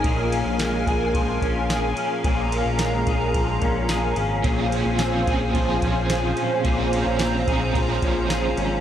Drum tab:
RD |xxxxxxxx|xxxxxxxx|xxxxxxxx|xxxxxxxx|
TB |--x---x-|--x---x-|--x---x-|--x---x-|
SD |--o---o-|--o---o-|--o---o-|--o---o-|
BD |o--ooo--|o--ooo--|o--ooo--|o--ooo--|